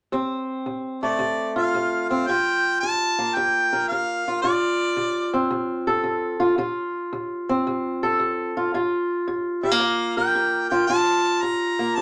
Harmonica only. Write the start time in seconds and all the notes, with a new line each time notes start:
1.03 D5
1.58 F5
2.09 F5
2.27 G5
2.80 A5
3.35 G5
3.88 F5
4.42 D5
9.64 F5
10.18 G5
10.70 G5
10.87 A5
11.42 A#5
11.96 A5